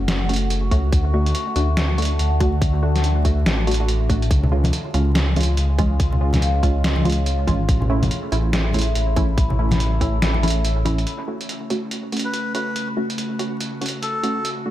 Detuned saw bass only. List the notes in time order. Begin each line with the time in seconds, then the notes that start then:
0.08 F#1
0.71 C#2
0.93 D2
1.56 D2
2.19 D2
3.46 A1
4.31 C#2
4.94 C#2
5.57 C#2
6.84 C#2
7.47 G#1
7.69 A1
8.32 A1
8.95 A1
10.22 A1